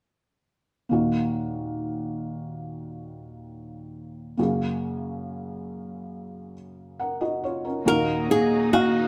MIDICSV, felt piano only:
0, 0, Header, 1, 2, 480
1, 0, Start_track
1, 0, Key_signature, -6, "minor"
1, 0, Tempo, 869565
1, 501, Time_signature, 4, 2, 24, 8
1, 5011, End_track
2, 0, Start_track
2, 0, Title_t, "Felt piano"
2, 0, Program_c, 0, 0
2, 492, Note_on_c, 0, 58, 36
2, 501, Note_on_c, 0, 63, 34
2, 502, Note_on_c, 0, 46, 33
2, 503, Note_on_c, 0, 39, 35
2, 511, Note_on_c, 0, 66, 39
2, 606, Control_c, 0, 64, 127
2, 2394, Note_off_c, 0, 58, 0
2, 2399, Note_off_c, 0, 39, 0
2, 2399, Note_off_c, 0, 46, 0
2, 2399, Note_off_c, 0, 63, 0
2, 2404, Note_off_c, 0, 66, 0
2, 2414, Note_on_c, 0, 58, 40
2, 2424, Note_on_c, 0, 42, 36
2, 2424, Note_on_c, 0, 66, 38
2, 2425, Note_on_c, 0, 49, 38
2, 2426, Control_c, 0, 64, 0
2, 2433, Note_on_c, 0, 68, 43
2, 2537, Control_c, 0, 64, 127
2, 3595, Note_off_c, 0, 58, 0
2, 3600, Note_off_c, 0, 66, 0
2, 3605, Note_off_c, 0, 68, 0
2, 3861, Note_on_c, 0, 78, 37
2, 3866, Note_on_c, 0, 70, 31
2, 3975, Note_off_c, 0, 78, 0
2, 3977, Note_off_c, 0, 70, 0
2, 3978, Note_on_c, 0, 75, 44
2, 3981, Note_on_c, 0, 66, 38
2, 4093, Note_off_c, 0, 75, 0
2, 4095, Note_off_c, 0, 66, 0
2, 4105, Note_on_c, 0, 73, 42
2, 4110, Note_on_c, 0, 65, 36
2, 4217, Note_off_c, 0, 73, 0
2, 4220, Note_off_c, 0, 65, 0
2, 4220, Note_on_c, 0, 70, 36
2, 4223, Note_on_c, 0, 61, 32
2, 4320, Note_off_c, 0, 42, 0
2, 4321, Note_off_c, 0, 49, 0
2, 4335, Note_on_c, 0, 58, 55
2, 4339, Note_on_c, 0, 63, 51
2, 4340, Note_on_c, 0, 39, 38
2, 4341, Note_on_c, 0, 46, 39
2, 4345, Note_on_c, 0, 66, 63
2, 4347, Control_c, 0, 64, 0
2, 4427, Control_c, 0, 64, 127
2, 4448, Note_off_c, 0, 70, 0
2, 4450, Note_off_c, 0, 61, 0
2, 4565, Note_off_c, 0, 58, 0
2, 4568, Note_off_c, 0, 63, 0
2, 4571, Note_off_c, 0, 66, 0
2, 4577, Note_on_c, 0, 58, 47
2, 4579, Note_on_c, 0, 63, 44
2, 4586, Note_on_c, 0, 68, 51
2, 4806, Note_off_c, 0, 58, 0
2, 4808, Note_off_c, 0, 63, 0
2, 4811, Note_off_c, 0, 68, 0
2, 4814, Note_on_c, 0, 58, 47
2, 4820, Note_on_c, 0, 63, 42
2, 4824, Note_on_c, 0, 77, 49
2, 5011, Note_off_c, 0, 39, 0
2, 5011, Note_off_c, 0, 46, 0
2, 5011, Note_off_c, 0, 58, 0
2, 5011, Note_off_c, 0, 63, 0
2, 5011, Note_off_c, 0, 77, 0
2, 5011, End_track
0, 0, End_of_file